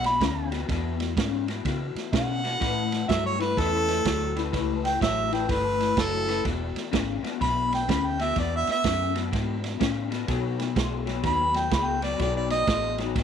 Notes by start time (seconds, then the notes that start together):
Already playing: B1 E2 B2
0.04 B5, snare, ride
0.20 D2 E2 C#3, kick, snare, ride
0.51 E2 B2, snare, ride
0.68 E2 B2, kick, snare, ride
1.00 snare, ride
1.16 E2 G#2 C#3, kick, snare, ride
1.48 E2 B2, snare, ride
1.65 E2 B2 C#3, kick, snare, ride
1.95 muted fingered electric bass stroke, snare, ride
2.12 E2 B2 C#3 F#5, kick, snare, ride
2.44 E2 B2, snare, ride
2.60 A2 E3, kick, snare, ride
2.92 snare, ride
3.08 G2 A2 F#3 E5, kick, snare, ride
3.26 C#5
3.39 A2 E3 B4, snare, ride
3.57 E2 A2 E3 A4, kick, snare, ride
3.88 snare, ride
4.05 D2 A2 F#3, kick, snare, ride
4.36 A2 E3, snare, ride
4.52 C#2 A2 E3, kick, snare, ride
4.85 G5, snare, ride
5.00 A1 A2 F#3 E5, kick, snare, ride
5.31 A2 E3 G5, snare, ride
5.48 G1 A2 E3 B4, kick, snare, ride
5.80 snare, ride
5.96 F#1 A2 F#3 A4, kick, snare, ride
6.27 A2 E3, snare, ride
6.44 E1 E2 B2, kick, snare, ride
6.75 muted fingered electric bass stroke, snare, ride
6.91 G#1 E2 C#3, kick, snare, ride
7.23 E2 B2, muted fingered electric bass stroke, snare, ride
7.40 B1 E2 B2 B5, kick, snare, ride
7.72 G5, snare, ride
7.88 D2 E2 C#3 B5, kick, snare, ride
8.07 G5
8.19 E2 B2 E5, snare, ride
8.36 E2 B2 D5, kick, snare, ride
8.56 E5
8.67 muted fingered electric bass stroke, snare, ride
8.71 E5
8.84 E2 F#2 C#3, kick, snare, ride
9.14 E2 B2, snare, ride
9.32 E2 G#2 B2, kick, snare, ride
9.64 snare, ride
9.80 E2 A2 C#3, kick, snare, ride
10.10 E2 B2, snare, ride
10.27 B2 F#3, kick, snare, ride
10.59 snare, ride
10.75 B1 B2 G#3, kick, snare, ride
11.06 B2 F#3, snare, ride
11.23 D#2 B2 F#3 B5, kick, snare, ride
11.54 G5, snare, ride
11.71 C#2 B2 G#3 B5, kick, snare, ride
11.86 G5
12.02 B2 F#3 D5, snare, ride
12.19 B1 B2 F#3 D5, kick, snare, ride
12.36 D5
12.50 D#5, snare, ride
12.67 A1 B2 G#3, kick, snare, ride
12.98 B2 F#3, snare, ride
13.15 G#1 B2 F#3, kick, snare, ride